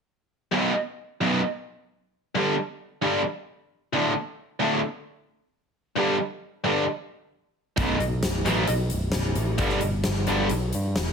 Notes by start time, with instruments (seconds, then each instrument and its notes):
0.51 distorted electric guitar B1 F#2 B2
1.21 distorted electric guitar B1 F#2 B2
2.35 distorted electric guitar G2 D3 G3
3.02 distorted electric guitar G2 D3 G3
3.93 distorted electric guitar D2 A2 D3
4.60 distorted electric guitar D2 A2 D3
5.96 distorted electric guitar G2 D3 G3
6.64 distorted electric guitar G2 D3 G3
7.77 picked electric bass B0, distorted electric guitar B1 F#2 B2, kick, closed hi-hat
8.00 picked electric bass B1, closed hi-hat
8.23 picked electric bass B0, snare, closed hi-hat
8.45 picked electric bass A1, distorted electric guitar B1 F#2 B2, closed hi-hat
8.67 picked electric bass B1, closed hi-hat
8.90 picked electric bass B0, closed hi-hat
9.12 picked electric bass B0, snare, closed hi-hat
9.35 picked electric bass A1, closed hi-hat
9.58 picked electric bass G1, distorted electric guitar G2 D3 G3, kick, closed hi-hat
9.69 snare
9.81 picked electric bass G1, closed hi-hat
10.04 picked electric bass G1, snare, closed hi-hat
10.27 picked electric bass G1, distorted electric guitar G2 D3 G3, closed hi-hat
10.49 picked electric bass B1, closed hi-hat
10.73 picked electric bass G2, closed hi-hat
10.96 picked electric bass E1, snare, closed hi-hat